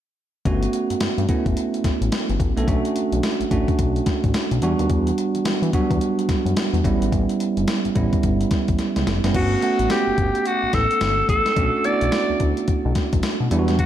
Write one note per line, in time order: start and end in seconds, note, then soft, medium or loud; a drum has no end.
0.45 0.67 G1 loud
0.45 1.15 A3 medium
0.45 1.15 B3 medium
0.45 1.15 C#4 medium
0.45 1.16 F#4 medium
0.45 kick loud
0.45 closed hi-hat medium
0.63 closed hi-hat soft
0.73 closed hi-hat medium
0.90 0.95 G2 soft
0.90 closed hi-hat medium
1.00 1.08 G2 medium
1.00 snare loud
1.00 closed hi-hat medium
1.18 1.26 G2 medium
1.18 closed hi-hat soft
1.29 2.19 A3 medium
1.29 2.19 B3 medium
1.29 2.19 C#4 medium
1.29 2.20 E4 medium
1.29 kick medium
1.29 closed hi-hat medium
1.46 1.54 G1 medium
1.46 kick medium
1.46 closed hi-hat soft
1.57 closed hi-hat medium
1.74 closed hi-hat soft
1.84 1.91 A1 soft
1.84 kick medium
1.84 snare medium
1.84 closed hi-hat medium
2.01 2.10 A1 medium
2.01 closed hi-hat medium
2.12 snare loud
2.12 closed hi-hat medium
2.29 2.38 G1 medium
2.29 closed hi-hat soft
2.40 2.53 A1 loud
2.40 kick medium
2.40 closed hi-hat medium
2.57 2.65 A#1 medium
2.57 2.66 A3 medium
2.57 2.66 B3 medium
2.57 2.66 C#4 medium
2.57 2.66 A4 medium
2.57 closed hi-hat medium
2.68 2.81 B1 loud
2.68 3.37 A3 medium
2.68 3.37 C#4 medium
2.68 3.37 D4 medium
2.68 3.38 F#4 medium
2.68 kick loud
2.68 closed hi-hat medium
2.85 closed hi-hat medium
2.96 closed hi-hat medium
3.12 3.21 B1 loud
3.12 closed hi-hat medium
3.23 snare loud
3.23 closed hi-hat medium
3.40 3.45 A1 soft
3.40 closed hi-hat soft
3.51 3.65 A1 loud
3.51 4.41 A3 medium
3.51 4.41 C#4 medium
3.51 4.42 D4 medium
3.51 4.42 F#4 medium
3.51 kick medium
3.51 closed hi-hat medium
3.68 kick medium
3.68 closed hi-hat soft
3.79 4.01 B1 medium
3.79 kick medium
3.79 closed hi-hat medium
3.96 closed hi-hat soft
4.06 kick medium
4.06 snare medium
4.06 closed hi-hat medium
4.24 4.32 A1 medium
4.24 kick medium
4.24 closed hi-hat medium
4.34 snare loud
4.34 closed hi-hat medium
4.51 4.60 B1 medium
4.51 closed hi-hat soft
4.62 4.75 E2 loud
4.62 5.53 G3 medium
4.62 5.53 B3 medium
4.62 5.53 D4 medium
4.62 5.53 F#4 loud
4.62 closed hi-hat medium
4.79 4.88 D#2 medium
4.79 closed hi-hat soft
4.90 5.12 E2 loud
4.90 kick loud
4.90 closed hi-hat medium
5.07 closed hi-hat medium
5.18 closed hi-hat medium
5.35 5.39 E3 soft
5.35 closed hi-hat medium
5.45 5.52 E3 medium
5.45 snare loud
5.45 closed hi-hat medium
5.62 5.71 E3 medium
5.62 closed hi-hat soft
5.73 5.81 F#3 medium
5.73 6.64 B3 medium
5.73 6.64 D4 medium
5.73 6.64 F#4 medium
5.73 kick medium
5.73 closed hi-hat medium
5.80 6.67 G3 medium
5.90 5.99 E2 medium
5.90 kick medium
5.90 closed hi-hat soft
6.01 closed hi-hat medium
6.19 closed hi-hat soft
6.29 6.36 F#2 medium
6.29 kick medium
6.29 snare medium
6.29 closed hi-hat medium
6.45 6.54 F#2 medium
6.45 closed hi-hat medium
6.57 snare loud
6.57 closed hi-hat medium
6.73 6.82 E2 medium
6.73 closed hi-hat soft
6.84 6.98 A1 loud
6.84 7.75 G3 medium
6.84 7.75 B3 medium
6.84 7.75 C#4 medium
6.84 7.75 E4 medium
6.84 kick medium
6.84 closed hi-hat medium
7.01 7.10 G#1 medium
7.01 closed hi-hat medium
7.12 7.26 A1 loud
7.12 kick loud
7.12 closed hi-hat medium
7.29 closed hi-hat soft
7.40 closed hi-hat medium
7.57 7.65 G1 medium
7.57 closed hi-hat medium
7.68 snare loud
7.68 closed hi-hat medium
7.85 7.89 A1 soft
7.85 closed hi-hat soft
7.95 8.09 A1 medium
7.95 8.86 G3 medium
7.95 8.86 B3 medium
7.95 8.86 C#4 medium
7.95 8.86 E4 medium
7.95 kick medium
7.95 closed hi-hat medium
8.13 kick medium
8.13 closed hi-hat soft
8.23 8.45 G1 medium
8.23 kick medium
8.23 closed hi-hat medium
8.41 closed hi-hat soft
8.51 kick medium
8.51 snare medium
8.51 closed hi-hat medium
8.68 8.77 A1 medium
8.68 kick medium
8.68 closed hi-hat medium
8.79 snare soft
8.79 closed hi-hat medium
8.96 9.05 C#2 medium
8.96 snare medium
8.96 closed hi-hat soft
9.07 9.20 F1 medium
9.07 snare medium
9.07 closed hi-hat medium
9.24 9.32 F#1 medium
9.24 9.32 G3 medium
9.24 9.33 B3 medium
9.24 9.33 C#4 medium
9.24 9.33 E4 medium
9.24 snare medium
9.24 closed hi-hat soft
9.34 9.56 G1 loud
9.34 9.58 A3 medium
9.34 9.58 B3 medium
9.34 9.58 C#4 medium
9.34 9.59 F#4 medium
9.34 9.87 F#4 medium
9.34 kick loud
9.34 closed hi-hat medium
9.34 crash medium
9.62 10.53 A3 medium
9.62 10.53 B3 medium
9.62 10.53 C#4 medium
9.62 10.53 F#5 medium
9.62 closed hi-hat medium
9.79 9.88 A1 medium
9.79 closed hi-hat medium
9.90 10.48 G4 medium
9.90 snare loud
9.90 closed hi-hat medium
10.07 10.12 G1 soft
10.18 10.31 G1 loud
10.18 kick medium
10.18 closed hi-hat medium
10.35 closed hi-hat soft
10.46 10.76 F#4 medium
10.46 closed hi-hat medium
10.63 10.67 A1 soft
10.73 10.87 A1 loud
10.73 11.29 A4 medium
10.73 kick medium
10.73 snare medium
10.73 closed hi-hat medium
10.91 closed hi-hat medium
11.01 11.23 G1 medium
11.01 snare loud
11.01 closed hi-hat medium
11.29 11.42 A1 medium
11.29 11.87 A4 loud
11.29 kick medium
11.29 closed hi-hat medium
11.46 snare medium
11.46 closed hi-hat medium
11.56 11.70 B1 loud
11.56 11.80 A3 medium
11.56 11.81 C#4 medium
11.56 11.81 D4 medium
11.56 11.81 F#4 medium
11.56 kick loud
11.56 closed hi-hat medium
11.84 12.75 A3 medium
11.84 12.75 B3 medium
11.84 12.75 D4 medium
11.84 11.93 E4 medium
11.84 12.40 D5 loud
11.84 closed hi-hat medium
11.92 12.79 F#4 medium
12.01 12.10 B1 medium
12.01 closed hi-hat medium
12.12 snare loud
12.12 closed hi-hat medium
12.30 12.34 D2 soft
12.40 12.53 D2 loud
12.40 kick medium
12.40 closed hi-hat medium
12.57 closed hi-hat soft
12.68 kick medium
12.68 closed hi-hat medium
12.85 12.93 B1 loud
12.95 kick medium
12.95 snare medium
12.95 closed hi-hat medium
13.13 13.21 B1 medium
13.13 kick loud
13.13 closed hi-hat medium
13.23 snare loud
13.23 closed hi-hat medium
13.40 13.49 B2 medium
13.51 13.86 E2 loud
13.51 13.86 G3 medium
13.51 13.86 B3 medium
13.51 13.86 D4 medium
13.51 13.60 E4 medium
13.51 closed hi-hat medium
13.59 13.86 F#4 loud
13.68 snare medium
13.68 closed hi-hat soft
13.79 13.86 F#4 loud
13.79 kick loud
13.79 closed hi-hat medium